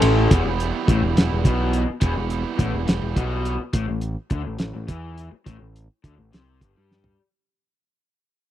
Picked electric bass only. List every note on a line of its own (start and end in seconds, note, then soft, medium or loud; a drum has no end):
0.02 0.27 A1 loud
0.32 0.44 E1 medium
0.44 0.71 E1 medium
0.88 1.01 A1 medium
1.02 1.15 E1 medium
1.15 1.29 E1 medium
1.32 1.44 E1 medium
1.45 1.84 B1 loud
1.90 muted picked electric bass stroke soft
2.02 2.15 E1 medium
2.17 2.43 E1 medium
2.59 2.72 A1 medium
2.74 2.87 E1 medium
2.88 3.01 E1 medium
3.02 3.15 E1 medium
3.17 3.56 B1 loud
3.60 muted picked electric bass stroke soft
3.74 3.87 A1 medium
3.89 4.15 A1 medium
4.32 4.44 D2 medium
4.47 4.59 A1 medium
4.60 4.73 A1 medium
4.75 4.88 A1 medium
4.89 5.28 E2 medium
5.33 muted picked electric bass stroke soft
5.47 5.59 A1 medium
5.61 5.87 A1 medium
6.04 6.17 D2 medium
6.18 6.31 A1 medium
6.34 6.60 C2 medium
6.61 6.74 G1 medium
6.77 7.16 G2 medium